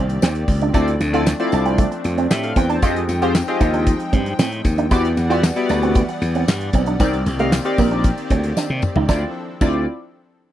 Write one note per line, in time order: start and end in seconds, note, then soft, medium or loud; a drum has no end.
0.00 0.17 C2 medium
0.00 0.72 D#3 medium
0.00 0.72 A#3 medium
0.00 4.88 C4 medium
0.00 0.72 G4 medium
0.00 2.79 D5 medium
0.09 closed hi-hat medium
0.22 0.44 D#2 medium
0.22 0.30 C4 medium
0.22 snare loud
0.22 clap loud
0.22 tambourine medium
0.35 closed hi-hat medium
0.48 0.69 C#2 loud
0.48 muted clean electric guitar stroke soft
0.48 kick loud
0.48 open hi-hat medium
0.48 tambourine soft
0.61 0.70 D4 medium
0.61 closed hi-hat medium
0.74 0.96 D2 loud
0.74 2.81 F3 medium
0.74 2.81 A3 medium
0.74 0.90 C4 medium
0.74 2.81 D4 medium
0.74 0.83 D4 medium
0.74 0.90 E4 medium
0.74 0.90 F4 medium
0.74 0.91 A4 medium
0.74 0.91 D5 loud
0.74 kick loud
0.74 closed hi-hat medium
0.74 tambourine medium
0.88 closed hi-hat medium
1.00 1.33 D2 loud
1.00 muted clean electric guitar stroke soft
1.00 closed hi-hat medium
1.00 tambourine medium
1.13 1.24 C4 medium
1.13 1.24 E4 medium
1.13 1.24 F4 medium
1.13 1.22 F4 medium
1.13 1.24 A4 medium
1.13 1.24 D5 loud
1.13 closed hi-hat medium
1.26 muted clean electric guitar stroke soft
1.26 snare loud
1.26 clap medium
1.26 tambourine medium
1.40 1.83 C4 medium
1.40 1.83 E4 medium
1.40 1.83 F4 medium
1.40 1.83 A4 medium
1.40 1.83 D5 loud
1.40 closed hi-hat medium
1.52 1.85 C2 loud
1.52 1.61 D4 medium
1.52 closed hi-hat medium
1.52 tambourine medium
1.66 1.74 C4 medium
1.66 closed hi-hat medium
1.78 1.87 A3 medium
1.78 kick loud
1.78 closed hi-hat loud
1.78 tambourine soft
1.92 muted clean electric guitar stroke medium
1.92 closed hi-hat soft
2.04 2.26 F2 medium
2.04 closed hi-hat medium
2.04 tambourine soft
2.18 2.26 C4 medium
2.18 closed hi-hat medium
2.30 2.52 A2 loud
2.30 2.43 G4 medium
2.30 2.43 E5 medium
2.30 muted clean electric guitar stroke soft
2.30 snare loud
2.30 clap loud
2.30 tambourine loud
2.43 2.56 A4 medium
2.43 2.56 F5 medium
2.43 closed hi-hat medium
2.56 2.78 E2 loud
2.56 2.65 C4 medium
2.56 2.70 B4 medium
2.56 2.69 G5 medium
2.56 kick loud
2.56 closed hi-hat medium
2.56 tambourine soft
2.70 2.78 D4 medium
2.70 2.95 C5 medium
2.70 2.95 A5 medium
2.70 closed hi-hat medium
2.82 3.04 F2 loud
2.82 4.89 F3 medium
2.82 4.89 G#3 medium
2.82 2.99 C4 medium
2.82 4.89 D#4 medium
2.82 2.99 F4 medium
2.82 2.91 F4 medium
2.82 2.99 G4 medium
2.82 2.99 G#4 medium
2.82 2.99 D#5 loud
2.82 4.90 G5 loud
2.82 kick loud
2.82 closed hi-hat medium
2.82 tambourine medium
2.96 closed hi-hat medium
3.09 3.41 F2 loud
3.09 muted clean electric guitar stroke soft
3.09 closed hi-hat medium
3.09 tambourine medium
3.22 3.33 C4 loud
3.22 3.30 F4 medium
3.22 3.33 F4 medium
3.22 3.33 G4 medium
3.22 3.33 G#4 medium
3.22 3.33 C5 loud
3.22 closed hi-hat medium
3.35 muted clean electric guitar stroke soft
3.35 snare loud
3.35 clap medium
3.35 tambourine medium
3.48 3.91 C4 medium
3.48 3.91 F4 medium
3.48 3.92 G4 medium
3.48 3.92 G#4 medium
3.48 3.92 D#5 loud
3.48 closed hi-hat medium
3.61 3.93 D#2 medium
3.61 3.69 D#4 medium
3.61 kick loud
3.61 closed hi-hat medium
3.61 tambourine medium
3.74 3.82 D4 medium
3.74 closed hi-hat medium
3.86 kick loud
3.86 closed hi-hat loud
3.86 tambourine soft
4.00 closed hi-hat medium
4.13 4.34 G2 medium
4.13 4.21 C4 medium
4.13 kick loud
4.13 closed hi-hat medium
4.26 closed hi-hat medium
4.39 4.61 A2 loud
4.39 4.47 C4 medium
4.39 snare loud
4.39 clap medium
4.39 tambourine medium
4.52 closed hi-hat medium
4.65 4.86 D#2 loud
4.65 muted clean electric guitar stroke medium
4.65 kick loud
4.65 closed hi-hat medium
4.65 tambourine soft
4.78 4.86 D4 loud
4.78 closed hi-hat medium
4.91 5.13 E2 loud
4.91 6.98 E3 medium
4.91 6.98 G3 medium
4.91 6.98 B3 medium
4.91 5.08 B3 medium
4.91 5.00 E4 medium
4.91 5.08 E4 medium
4.91 5.08 F#4 medium
4.91 5.08 G4 medium
4.91 9.05 D5 medium
4.91 5.08 D5 loud
4.91 6.98 F#5 medium
4.91 kick loud
4.91 closed hi-hat medium
4.91 tambourine medium
5.05 closed hi-hat medium
5.17 5.49 E2 loud
5.17 muted clean electric guitar stroke soft
5.17 closed hi-hat medium
5.17 tambourine medium
5.29 5.41 B3 medium
5.29 5.41 E4 medium
5.29 5.39 F4 medium
5.29 5.41 F#4 medium
5.29 5.41 G4 medium
5.29 5.41 D5 loud
5.29 closed hi-hat medium
5.43 muted clean electric guitar stroke soft
5.43 snare loud
5.43 clap medium
5.43 tambourine loud
5.56 6.00 B3 medium
5.56 6.00 E4 medium
5.56 6.00 F#4 medium
5.56 6.00 G4 medium
5.56 6.00 D5 medium
5.56 closed hi-hat medium
5.69 6.02 D2 loud
5.69 5.78 D4 medium
5.69 closed hi-hat medium
5.69 tambourine medium
5.83 5.91 C4 medium
5.83 closed hi-hat medium
5.95 6.04 B3 medium
5.95 kick loud
5.95 closed hi-hat loud
5.95 tambourine soft
6.09 muted clean electric guitar stroke soft
6.09 closed hi-hat medium
6.22 6.43 E2 loud
6.22 closed hi-hat medium
6.22 tambourine soft
6.35 6.43 C4 medium
6.35 closed hi-hat medium
6.47 6.69 G2 loud
6.47 muted clean electric guitar stroke soft
6.47 snare loud
6.47 clap loud
6.47 tambourine loud
6.61 closed hi-hat medium
6.73 6.95 B1 loud
6.73 6.82 C4 medium
6.73 kick loud
6.73 closed hi-hat medium
6.73 tambourine medium
6.86 6.96 D4 medium
6.86 closed hi-hat medium
7.00 7.21 C2 loud
7.00 9.07 D#3 medium
7.00 9.07 A#3 medium
7.00 7.16 C4 medium
7.00 9.07 C4 medium
7.00 7.09 C4 medium
7.00 7.16 D#4 medium
7.00 7.16 G4 medium
7.00 9.07 G4 medium
7.00 7.17 A#4 medium
7.00 7.17 D5 loud
7.00 kick loud
7.00 closed hi-hat medium
7.00 tambourine medium
7.13 closed hi-hat medium
7.26 7.58 C2 loud
7.26 muted clean electric guitar stroke soft
7.26 closed hi-hat medium
7.26 tambourine medium
7.39 7.48 A3 medium
7.39 7.50 C4 medium
7.39 7.50 D#4 medium
7.39 7.50 G4 medium
7.39 7.50 A#4 medium
7.39 7.50 F5 loud
7.39 closed hi-hat medium
7.52 muted clean electric guitar stroke soft
7.52 snare loud
7.52 clap loud
7.52 tambourine medium
7.65 8.09 C4 medium
7.65 8.09 D#4 medium
7.65 8.09 G4 medium
7.65 8.09 A#4 medium
7.65 8.09 D5 loud
7.65 closed hi-hat medium
7.78 8.11 A#1 loud
7.78 7.87 A#3 medium
7.78 kick loud
7.78 open hi-hat medium
7.78 tambourine medium
7.91 8.00 D4 medium
7.91 closed hi-hat medium
8.04 kick loud
8.04 closed hi-hat loud
8.04 tambourine soft
8.18 closed hi-hat medium
8.30 8.52 D2 loud
8.30 8.39 C4 medium
8.30 kick loud
8.30 closed hi-hat medium
8.44 closed hi-hat medium
8.57 8.65 D4 medium
8.57 snare medium
8.57 tambourine medium
8.70 8.81 C3 medium
8.82 muted clean electric guitar stroke medium
8.82 mid tom loud
8.82 tambourine medium
8.96 9.07 C#2 medium
8.96 9.04 D#4 medium
8.96 floor tom loud
9.08 9.23 D2 loud
9.08 9.34 F3 medium
9.08 9.23 C4 medium
9.08 9.34 C4 medium
9.08 9.18 D4 medium
9.08 9.33 D4 medium
9.08 9.23 E4 medium
9.08 9.33 E4 medium
9.08 9.23 F4 medium
9.08 9.34 A4 medium
9.08 9.23 D5 medium
9.08 kick loud
9.08 snare medium
9.08 tambourine medium
9.61 9.85 D2 loud
9.61 9.85 C4 medium
9.61 9.77 D4 medium
9.61 9.85 E4 medium
9.61 9.85 F4 medium
9.61 9.85 D5 medium
9.61 kick loud
9.61 crash medium
9.61 tambourine medium